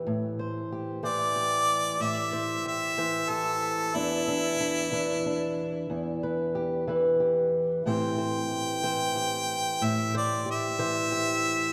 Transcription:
<<
  \new Staff \with { instrumentName = "Harmonica" } { \time 12/8 \key a \dorian \tempo 4. = 61 r4. d''4. e''4 e''4 a'4 | e'2. r2. | g''2. e''8 d''8 e''2 | }
  \new Staff \with { instrumentName = "Steel-string acoustic guitar" } { \time 12/8 \key a \dorian << { r8 c''8 g'8 c''8 g'4. c''8 g'8 c''8 g'4 | <e d'>8 d'8 d'8 d'8 d'4. b'8 g'8 b'8 g'4 | <e c' g' c''>8 c''8 g'8 c''8 g'4. c''8 g'8 c''8 g'4 | } \\ { <a, e>4. e4. a,4. e4. | e,4. e4. e,4. e4. | a,4. e4. a,4. e4. | } >> }
>>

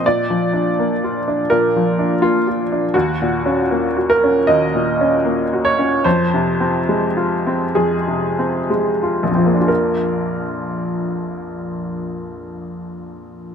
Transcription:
<<
  \new Staff \with { instrumentName = "Upright piano" } { \time 4/4 \key f \phrygian \tempo 4 = 74 d''2 bes'4 f'4 | ges'4. bes'8 ees''4. des''8 | c''2 aes'4 r4 | <bes,, f, f bes d' f' bes'>1 | }
  \new Staff \with { instrumentName = "Upright piano" } { \time 4/4 \key f \phrygian \tuplet 3/2 { bes,8 f8 d'8 bes8 f'8 d'8 bes,8 f8 d'8 bes8 f'8 d'8 } | \tuplet 3/2 { ees,8 bes,8 des'8 bes8 ges'8 des'8 ees,8 bes,8 des'8 bes8 ges'8 des'8 } | \tuplet 3/2 { f,8 c8 c'8 aes8 f'8 c'8 f,8 c8 c'8 aes8 f'8 c'8 } | r1 | }
>>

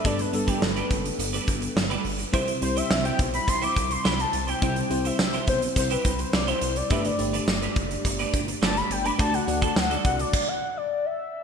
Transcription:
<<
  \new Staff \with { instrumentName = "Soft synth lead" } { \time 4/4 \key g \major \tempo 4 = 105 d''16 b'16 a'16 g'16 b'4 r2 | r8 c''16 e''8 g''8 b''16 c'''16 d'''8 c'''16 b''16 a''8 g''16~ | g''8. e''8. c''8 c''16 b'8 c''16 d''16 c''8 d''16 | e''16 d''4 r4. r16 a''16 b''16 g''16 b''16 |
a''16 fis''8 a''16 fis''8 fis''16 d''8 fis''8 d''8 e''8. | }
  \new Staff \with { instrumentName = "Clean electric guitar" } { \time 4/4 \key g \major <a d' g' b'>16 r8 <a d' g' b'>16 r16 <a d' g' b'>16 r8. <a d' g' b'>16 r8. <a d' g' b'>16 r8 | <c' e' g' c''>16 r8 <c' e' g' c''>16 r16 <c' e' g' c''>16 r8. <c' e' g' c''>16 r8 <c' e' g' c''>16 r8 <c' e' g' c''>16 | <c' e' g' c''>16 r8 <c' e' g' c''>16 r16 <c' e' g' c''>16 r8. <c' e' g' c''>16 r8. <c' e' g' c''>16 r8 | <a d' g' b'>16 r8 <a d' g' b'>16 r16 <a d' g' b'>16 r8. <a d' g' b'>16 r8 <a d' g' b'>16 r8 <a d' g' b'>16 |
<a d' fis' a'>16 r8 <a d' fis' a'>16 r16 <a d' fis' a'>16 r2 r8 | }
  \new Staff \with { instrumentName = "FM electric piano" } { \time 4/4 \key g \major <g b d' a'>8 <g b d' a'>4. r2 | <g c' e' c''>8 <g c' e' c''>4. r2 | <g c' e' c''>8 <g c' e' c''>4. r2 | <a d' g' b'>8 <a d' g' d''>4. r2 |
<a d' fis' d''>8 <a d' fis' d''>4. r2 | }
  \new Staff \with { instrumentName = "FM electric piano" } { \clef bass \time 4/4 \key g \major g,4. r2 r8 | c4. r2 r8 | c4. r2 r8 | g,4. r2 r8 |
d4. r2 r8 | }
  \new Staff \with { instrumentName = "Analog synth bass" } { \clef bass \time 4/4 \key g \major g,,8 g,,8 g,,8 fis,,8 g,,8 g,,8 g,,8 g,,8 | c,8 c,8 c,8 b,,8 c,8 c,8 c,8 c,8 | c,8 c,8 c,8 b,,8 c,8 c,8 c,8 c,8 | g,,8 g,,8 g,,8 fis,,8 g,,8 g,,8 g,,8 g,,8 |
d,8 d,8 d,8 c,8 r2 | }
  \new DrumStaff \with { instrumentName = "Drums" } \drummode { \time 4/4 <hh bd>16 hh16 hh16 <hh bd>16 sn16 hh16 <hh bd>16 hh16 hh16 hh16 <hh bd>16 hh16 sn16 hh16 hho16 hh16 | <hh bd>16 hh16 hh16 hh16 <sn tamb>16 hh16 <hh bd>16 hh16 <hh bd>16 hh16 <hh bd>16 hh16 <sn tamb>16 hh16 hh16 hh16 | <hh bd>16 hh16 hh16 hh16 <sn tamb>16 hh16 <hh bd>16 hh16 <hh bd>16 hh16 <hh bd>16 hh16 <sn tamb>16 hh16 hh16 hh16 | <hh bd>16 hh16 hh16 hh16 <sn tamb>16 hh16 <hh bd>16 hh16 <hh bd>16 hh16 <hh bd>16 hh16 <sn tamb>16 hh16 hh16 hh16 |
<hh bd>16 hh16 hh16 <hh bd>16 <sn tamb>16 hh16 <hh bd>16 hh16 <cymc bd>4 r4 | }
>>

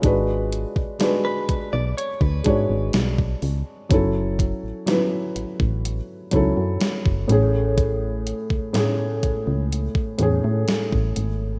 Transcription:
<<
  \new Staff \with { instrumentName = "Clean electric guitar" } { \time 4/4 \key a \major \tempo 4 = 62 r4 r16 b'8 d''16 cis''16 b'4. r16 | r1 | r1 | }
  \new Staff \with { instrumentName = "Felt piano" } { \time 4/4 \key a \major << { <eis' cis''>16 r2. r8. | r1 | r1 | } \\ { <gis d' fis' b'>8. r16 <gis d' fis' b'>4 r8 <gis d' fis' cis''>4 r8 | <fis cis' e' a'>8. r16 <fis cis' e' b'>4 r8 <fis cis' e' a'>4 <a, a cis' gis'>8~ | <a, a cis' gis'>8 r8 <a, a cis' gis'>4 r8 <a, a cis' gis'>4 r8 | } >> }
  \new Staff \with { instrumentName = "FM bass" } { \clef bass \time 4/4 \key a \major gis,,8. b,,16 r8 b,,16 b,,16 r16 d,16 gis,16 gis,,16 b,,8 cis,16 r16 | fis,,8. a,,16 r8 a,,16 a,,8 r16 cis,16 fis,16 r16 fis,,16 a,,8~ | a,,8. cis,16 r8 cis,16 cis,8 r16 e,16 a,16 r16 a,,16 gis,,8 | }
  \new DrumStaff \with { instrumentName = "Drums" } \drummode { \time 4/4 <hh bd>8 hh16 bd16 <hh sn>8 <hh bd>8 hh16 bd16 <hh bd>8 <hh sn>16 bd16 hho8 | <hh bd>8 <hh bd>8 <hh sn>8 hh16 bd16 hh8 <hh bd>8 <hh sn>16 bd16 hh8 | <hh bd>8 hh16 bd16 <hh sn>8 <hh bd>8 hh16 bd16 hh8 <hh sn>16 bd16 hh8 | }
>>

